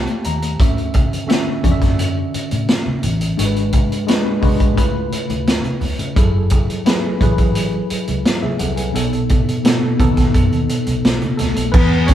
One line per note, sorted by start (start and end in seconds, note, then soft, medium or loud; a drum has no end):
0.00 0.61 A3 medium
0.00 0.62 G4 medium
0.00 0.62 C5 medium
0.00 0.62 C#5 medium
0.00 0.62 F5 medium
0.00 0.62 G5 medium
0.00 0.23 A5 medium
0.07 closed hi-hat soft
0.24 0.55 D#2 medium
0.24 0.58 A#5 medium
0.24 closed hi-hat medium
0.42 closed hi-hat soft
0.59 1.05 D2 medium
0.59 1.23 D3 medium
0.59 1.23 C#4 medium
0.59 1.23 F#4 medium
0.59 1.23 E5 medium
0.59 kick loud
0.59 closed hi-hat medium
0.59 muted conga soft
0.77 closed hi-hat soft
0.77 muted conga soft
0.94 kick medium
0.94 closed hi-hat medium
0.94 high conga medium
1.13 muted fingered electric bass stroke soft
1.13 closed hi-hat soft
1.27 1.60 D3 medium
1.27 1.60 C#4 medium
1.27 1.60 F#4 medium
1.27 1.61 E5 medium
1.27 snare medium
1.27 closed hi-hat medium
1.47 muted conga soft
1.63 2.24 F#2 medium
1.63 2.89 D3 medium
1.63 2.89 C#4 medium
1.63 2.90 F#4 medium
1.63 1.71 D5 medium
1.63 kick medium
1.63 closed hi-hat medium
1.63 high conga medium
1.63 low conga medium
1.71 2.93 E5 medium
1.82 kick medium
1.82 snare soft
1.82 closed hi-hat soft
1.99 closed hi-hat medium
1.99 muted conga soft
2.17 muted conga soft
2.34 muted fingered electric bass stroke soft
2.34 closed hi-hat medium
2.51 2.67 A2 medium
2.51 closed hi-hat soft
2.51 high conga soft
2.68 snare loud
2.68 closed hi-hat medium
2.68 muted conga soft
2.86 muted conga soft
2.86 high conga medium
3.03 3.34 A1 medium
3.03 closed hi-hat medium
3.03 low conga medium
3.21 closed hi-hat medium
3.37 3.84 G#1 medium
3.37 4.01 G#3 medium
3.37 4.01 D4 medium
3.37 4.01 F#4 medium
3.37 3.45 A#4 medium
3.37 closed hi-hat medium
3.37 muted conga soft
3.45 4.05 B4 medium
3.56 closed hi-hat soft
3.72 kick medium
3.72 closed hi-hat medium
3.72 high conga medium
3.91 muted fingered electric bass stroke soft
3.91 closed hi-hat soft
4.07 4.39 G#3 medium
4.07 4.39 D4 medium
4.07 4.40 F#4 medium
4.07 4.40 B4 medium
4.07 snare loud
4.07 closed hi-hat medium
4.07 muted conga soft
4.25 muted conga soft
4.42 4.78 B1 medium
4.42 4.77 G#3 medium
4.42 4.77 D4 medium
4.42 4.77 F#4 medium
4.42 4.76 B4 medium
4.42 kick medium
4.42 open hi-hat soft
4.42 high conga medium
4.42 low conga medium
4.60 kick medium
4.60 closed hi-hat soft
4.76 5.08 C#2 medium
4.76 6.02 C#3 medium
4.76 6.02 A3 medium
4.76 6.03 E4 medium
4.76 6.03 F4 medium
4.76 6.03 B4 medium
4.76 kick medium
4.76 closed hi-hat medium
4.76 muted conga soft
5.12 muted fingered electric bass stroke soft
5.12 closed hi-hat medium
5.29 5.60 D2 medium
5.29 closed hi-hat soft
5.29 high conga soft
5.47 snare medium
5.47 closed hi-hat medium
5.47 muted conga soft
5.64 closed hi-hat soft
5.64 muted conga soft
5.64 high conga medium
5.81 5.97 C#2 medium
5.81 open hi-hat soft
5.81 low conga medium
5.99 6.18 C#3 medium
5.99 closed hi-hat medium
6.16 6.61 F#1 medium
6.16 6.79 F#3 medium
6.16 6.80 E4 medium
6.16 6.80 G#4 medium
6.16 6.80 A4 medium
6.16 kick loud
6.16 closed hi-hat medium
6.16 muted conga soft
6.50 kick medium
6.50 closed hi-hat medium
6.50 high conga medium
6.69 muted fingered electric bass stroke soft
6.69 closed hi-hat soft
6.85 7.17 F#3 medium
6.85 7.18 E4 medium
6.85 7.18 G#4 medium
6.85 7.18 B4 medium
6.85 snare loud
6.85 closed hi-hat medium
6.85 muted conga soft
7.04 muted conga soft
7.20 7.81 A1 medium
7.20 8.46 F#3 medium
7.20 8.25 E4 medium
7.20 8.26 G#4 medium
7.20 8.26 B4 medium
7.20 kick medium
7.20 closed hi-hat medium
7.20 high conga medium
7.20 low conga medium
7.38 kick medium
7.38 closed hi-hat soft
7.55 closed hi-hat medium
7.55 muted conga soft
7.73 muted conga soft
7.90 muted fingered electric bass stroke soft
7.90 closed hi-hat medium
8.07 8.24 C#2 medium
8.07 closed hi-hat soft
8.07 high conga soft
8.25 8.43 E4 soft
8.25 8.42 C#5 medium
8.25 snare loud
8.25 closed hi-hat medium
8.25 muted conga soft
8.42 8.60 G#4 medium
8.42 8.59 E5 medium
8.42 high conga medium
8.59 8.90 C2 medium
8.59 8.77 A4 medium
8.59 8.76 F#5 medium
8.59 closed hi-hat medium
8.59 low conga medium
8.76 9.11 B4 soft
8.76 9.10 G#5 medium
8.76 closed hi-hat medium
8.93 9.40 B1 medium
8.93 9.57 B2 medium
8.93 9.57 B3 medium
8.93 9.58 D#4 medium
8.93 9.58 A4 medium
8.93 closed hi-hat medium
8.93 muted conga soft
9.13 closed hi-hat soft
9.13 muted conga soft
9.29 kick medium
9.29 closed hi-hat medium
9.29 high conga medium
9.48 muted fingered electric bass stroke soft
9.48 closed hi-hat soft
9.64 9.96 B2 medium
9.64 9.96 B3 medium
9.64 9.96 D#4 medium
9.64 9.97 A4 medium
9.64 snare loud
9.64 closed hi-hat medium
9.82 muted conga soft
9.98 10.30 D#2 medium
9.98 11.25 B2 medium
9.98 11.25 B3 medium
9.98 11.26 D#4 medium
9.98 11.26 A4 medium
9.98 kick medium
9.98 closed hi-hat medium
9.98 high conga medium
9.98 low conga medium
10.17 kick medium
10.17 snare soft
10.17 closed hi-hat medium
10.34 10.50 F#2 medium
10.34 kick medium
10.34 closed hi-hat medium
10.34 muted conga soft
10.52 10.67 D#2 medium
10.52 closed hi-hat soft
10.52 muted conga soft
10.69 closed hi-hat medium
10.86 11.02 B1 medium
10.86 closed hi-hat soft
10.86 high conga soft
11.05 11.20 B1 medium
11.05 snare medium
11.05 closed hi-hat medium
11.05 muted conga soft
11.21 closed hi-hat soft
11.21 muted conga soft
11.21 high conga medium
11.37 11.55 C#2 medium
11.37 11.72 A3 medium
11.37 11.71 A4 medium
11.37 snare soft
11.37 closed hi-hat medium
11.37 low conga medium
11.56 11.72 B1 medium
11.56 closed hi-hat medium
11.72 12.14 E2 medium
11.72 12.07 B3 medium
11.72 12.14 G#4 medium
11.72 12.09 B4 loud
11.72 12.14 F#5 medium
11.72 12.14 G#5 medium
11.72 12.14 D#6 medium
11.72 kick loud
11.72 crash loud
11.72 muted conga soft
11.72 low conga medium
11.93 muted conga soft
12.07 12.14 C#4 medium
12.07 12.14 C#5 loud
12.07 kick medium
12.07 closed hi-hat medium
12.07 high conga medium